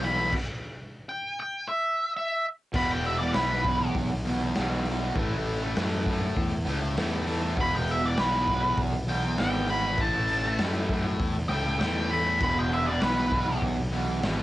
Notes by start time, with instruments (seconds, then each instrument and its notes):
Already playing: fingered electric bass B1
0.01 distorted electric guitar E2 B2, lead electric guitar B5, open hi-hat
0.06 distorted electric guitar E3
0.16 distorted electric guitar E3
0.20 distorted electric guitar B2
0.33 kick, crash
1.09 lead electric guitar G5
1.40 lead electric guitar G5
1.69 lead electric guitar E5
2.17 lead electric guitar E5
2.73 fingered electric bass E1, distorted electric guitar E2 B2, lead electric guitar B5, kick, crash
2.77 distorted electric guitar E3
2.88 distorted electric guitar B2 E3, lead electric guitar G5
3.04 lead electric guitar E5, open hi-hat
3.19 distorted electric guitar E3, lead electric guitar D5
3.23 distorted electric guitar B2
3.33 fingered electric bass B1, distorted electric guitar E2 B2, lead electric guitar B4, snare, open hi-hat
3.39 distorted electric guitar E3
3.65 distorted electric guitar E2 B2, kick, open hi-hat
3.69 distorted electric guitar E3
3.80 muted distorted electric guitar stroke
3.95 fingered electric bass B1, kick, open hi-hat
4.25 distorted electric guitar E2 B2, open hi-hat
4.29 distorted electric guitar E3
4.41 muted distorted electric guitar stroke
4.55 fingered electric bass B1, distorted electric guitar E2 B2, snare, open hi-hat
4.60 distorted electric guitar E3
4.85 distorted electric guitar E2 B2, open hi-hat
4.90 distorted electric guitar E3
5.01 distorted electric guitar B2 E3
5.16 fingered electric bass A1, distorted electric guitar A2 E3, kick, open hi-hat
5.21 distorted electric guitar A3
5.32 distorted electric guitar A3
5.36 distorted electric guitar E3
5.46 open hi-hat
5.63 distorted electric guitar A3
5.67 distorted electric guitar E3
5.76 fingered electric bass F#2, distorted electric guitar A2 E3, snare, open hi-hat
5.81 distorted electric guitar A3
6.06 distorted electric guitar A2 E3, kick, open hi-hat
6.10 distorted electric guitar A3
6.23 muted distorted electric guitar stroke
6.36 fingered electric bass E2, kick, open hi-hat
6.65 fingered electric bass C#2, distorted electric guitar A2 E3, open hi-hat
6.69 distorted electric guitar A3
6.81 muted distorted electric guitar stroke
6.97 fingered electric bass E2, distorted electric guitar A2 E3 A3, snare, open hi-hat
7.24 distorted electric guitar A2 E3 A3, open hi-hat
7.40 distorted electric guitar E3 A3
7.55 fingered electric bass E1, distorted electric guitar E2 B2, kick, open hi-hat
7.59 distorted electric guitar E3, lead electric guitar B5
7.72 distorted electric guitar B2 E3
7.76 lead electric guitar G5
7.88 lead electric guitar E5, open hi-hat
8.02 distorted electric guitar B2 E3, lead electric guitar D5
8.16 fingered electric bass B1, distorted electric guitar E2 B2 E3, lead electric guitar B4, snare, open hi-hat
8.47 distorted electric guitar E2 B2, kick, open hi-hat
8.53 distorted electric guitar E3
8.64 muted distorted electric guitar stroke
8.77 fingered electric bass B1, kick, open hi-hat
9.07 distorted electric guitar E2 B2 E3, lead electric guitar G5, open hi-hat
9.24 muted distorted electric guitar stroke
9.37 fingered electric bass G#1, distorted electric guitar E2 B2, lead electric guitar G5, snare, open hi-hat
9.43 distorted electric guitar E3
9.67 distorted electric guitar E2 B2 E3, lead electric guitar B5, open hi-hat
9.82 distorted electric guitar B2 E3
9.98 fingered electric bass A1, distorted electric guitar A2 E3 A3, lead electric guitar A5, kick, open hi-hat
10.14 distorted electric guitar A3
10.18 distorted electric guitar E3
10.28 open hi-hat
10.44 distorted electric guitar E3 A3
10.58 fingered electric bass F#2, distorted electric guitar A2 E3, snare, open hi-hat
10.64 distorted electric guitar A3
10.89 distorted electric guitar A2 E3 A3, kick, open hi-hat
11.06 muted distorted electric guitar stroke
11.20 fingered electric bass E2, kick, open hi-hat
11.49 fingered electric bass C#2, distorted electric guitar A2 E3, lead electric guitar G5, open hi-hat
11.54 distorted electric guitar A3
11.66 muted distorted electric guitar stroke
11.79 fingered electric bass E2, distorted electric guitar A2 E3, lead electric guitar G5, snare, open hi-hat
11.83 distorted electric guitar A3
12.07 distorted electric guitar A2 E3, lead electric guitar B5, open hi-hat
12.12 distorted electric guitar A3
12.23 distorted electric guitar E3 A3
12.39 fingered electric bass E1, distorted electric guitar E2 B2 E3, lead electric guitar B5, kick, crash
12.54 distorted electric guitar E3
12.59 distorted electric guitar B2, lead electric guitar G5
12.72 lead electric guitar E5, open hi-hat
12.86 distorted electric guitar E3, lead electric guitar D5
12.90 distorted electric guitar B2
13.00 fingered electric bass B1, distorted electric guitar E2 B2, lead electric guitar B4, snare, open hi-hat
13.04 distorted electric guitar E3
13.30 distorted electric guitar E2 B2 E3, kick, open hi-hat
13.48 muted distorted electric guitar stroke
13.62 fingered electric bass B1, kick, open hi-hat
13.91 distorted electric guitar E2 B2 E3, open hi-hat
14.07 muted distorted electric guitar stroke
14.21 fingered electric bass G#1, distorted electric guitar E2 B2, snare, open hi-hat
14.25 distorted electric guitar E3